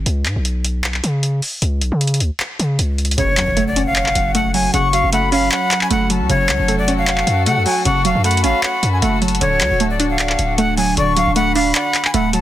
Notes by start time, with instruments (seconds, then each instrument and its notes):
0.06 808-style bass C#2, closed hi-hat
0.26 808-style bass G#2, clap, closed hi-hat
0.36 808-style bass B1
0.45 closed hi-hat
0.65 closed hi-hat
0.84 clap, closed hi-hat
0.94 clap
1.04 808-style bass C#3, closed hi-hat
1.23 closed hi-hat
1.42 open hi-hat
1.62 808-style bass C#2, closed hi-hat
1.81 808-style bass B1, closed hi-hat
1.92 808-style bass C#3
2.01 closed hi-hat
2.07 closed hi-hat
2.14 closed hi-hat
2.20 808-style bass D2, closed hi-hat
2.40 clap, closed hi-hat
2.59 808-style bass C#3, closed hi-hat
2.79 808-style bass C#2, closed hi-hat
2.98 closed hi-hat
3.05 closed hi-hat
3.11 closed hi-hat
3.18 808-style bass F#1, synth pluck C#3, string section F#3 C#4 F#4 A4, flute C#5, closed hi-hat, impact
3.37 808-style bass F#2, synth pluck F#3, clap, closed hi-hat
3.48 808-style bass F#1
3.57 synth pluck A3, flute F#5, closed hi-hat
3.68 flute D5
3.76 synth pluck C#4, closed hi-hat
3.87 flute F5
3.96 synth pluck C#5, clap, closed hi-hat
4.06 clap
4.15 808-style bass F#1, closed hi-hat
4.35 synth pluck A3, flute F#5, closed hi-hat
4.54 synth pluck F#3, flute G#5, open hi-hat
4.73 808-style bass F#1, synth pluck C#3, flute F#5 C#6, closed hi-hat
4.93 synth pluck F#3, flute F5, closed hi-hat
5.03 808-style bass F#1
5.13 synth pluck A3, flute F#5 B5, closed hi-hat
5.32 synth pluck C#4, flute F5, open hi-hat
5.51 synth pluck C#5, flute F#5, clap, closed hi-hat
5.71 clap, closed hi-hat
5.81 flute G#5, clap
5.90 808-style bass F#1, synth pluck A3, flute F#5, closed hi-hat
6.10 synth pluck F#3, flute A5, closed hi-hat
6.20 808-style bass C#2
6.29 808-style bass F#1, synth pluck C#3, flute C#5, closed hi-hat
6.49 808-style bass C#2, synth pluck F#3, clap, closed hi-hat
6.59 808-style bass F1
6.68 synth pluck A3, flute F#5, closed hi-hat
6.79 flute D5
6.88 synth pluck C#4, closed hi-hat
6.98 flute F5
7.07 synth pluck C#5, clap, closed hi-hat
7.18 clap
7.27 808-style bass F#2, closed hi-hat
7.46 808-style bass C#3, synth pluck A3, flute F#5, closed hi-hat
7.57 808-style bass F#2
7.66 synth pluck F#3, flute G#5, open hi-hat
7.85 808-style bass F#1, synth pluck C#3, flute F#5 C#6, closed hi-hat
8.05 808-style bass F1, synth pluck F#3, flute F5, closed hi-hat
8.15 808-style bass F#2
8.24 synth pluck A3, flute F#5 B5, closed hi-hat
8.31 closed hi-hat
8.37 closed hi-hat
8.44 808-style bass G#1, synth pluck C#4, flute F5, closed hi-hat
8.63 synth pluck C#5, flute F#5, clap, closed hi-hat
8.83 808-style bass F#2, closed hi-hat
8.93 flute G#5
9.02 808-style bass F#1, synth pluck A3, flute F#5, closed hi-hat
9.22 synth pluck F#3, flute A5, closed hi-hat
9.28 closed hi-hat
9.35 closed hi-hat
9.41 808-style bass D1, string section D3 D4, synth pluck D3, flute C#5, closed hi-hat
9.61 808-style bass D2, synth pluck F#3, clap, closed hi-hat
9.71 808-style bass D1
9.80 synth pluck A3, flute F#5, closed hi-hat
9.90 flute D5
10.00 synth pluck D4, closed hi-hat
10.10 flute F5
10.19 synth pluck D5, clap, closed hi-hat
10.29 clap
10.39 808-style bass D1, closed hi-hat
10.58 synth pluck A3, flute F#5, closed hi-hat
10.77 synth pluck F#3, flute G#5, open hi-hat
10.97 808-style bass D1, synth pluck D3, flute D5 C#6, closed hi-hat
11.17 synth pluck F#3, flute F5, closed hi-hat
11.27 808-style bass D1
11.35 synth pluck A3, flute F#5 B5, closed hi-hat
11.55 synth pluck D4, flute F5, open hi-hat
11.75 synth pluck D5, flute F#5, clap, closed hi-hat
11.94 clap, closed hi-hat
12.05 flute G#5, clap
12.14 808-style bass D1, synth pluck A3, flute F#5, closed hi-hat
12.33 synth pluck F#3, flute A5, closed hi-hat